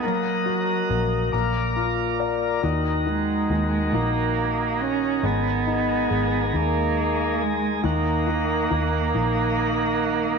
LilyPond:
<<
  \new Staff \with { instrumentName = "Tonewheel organ" } { \time 6/8 \key ees \minor \tempo 4. = 46 << { <ees'' ges''>4. <d'' f''>4. | ges'2. | aes'2. | ges''2. | } \\ { bes'4. bes'4. | ees'2.~ | ees'2.~ | ees'2. | } >> }
  \new Staff \with { instrumentName = "Tonewheel organ" } { \clef bass \time 6/8 \key ees \minor bes2. | ees2. | aes2. | ees2. | }
  \new Staff \with { instrumentName = "Cello" } { \time 6/8 \key ees \minor ges4. r4. | r8 aes4 bes4 des'8 | ces'4. bes4 aes8 | bes2. | }
  \new Staff \with { instrumentName = "Upright piano" } { \clef bass \time 6/8 \key ees \minor bes8 ges'8 bes8 bes8 f'8 d''8 | ees8 ees8 ees8 ees4. | aes8 ees'8 aes8 ees'4. | ees8 ees8 ees8 ees4. | }
  \new Staff \with { instrumentName = "Fingered electric bass" } { \clef bass \time 6/8 \key ees \minor bes,,4 bes,,8 bes,,4. | ees,4 ees,8 bes,,4. | aes,,4 aes,,8 ees,4. | ees,4 ees,8 bes,,4. | }
>>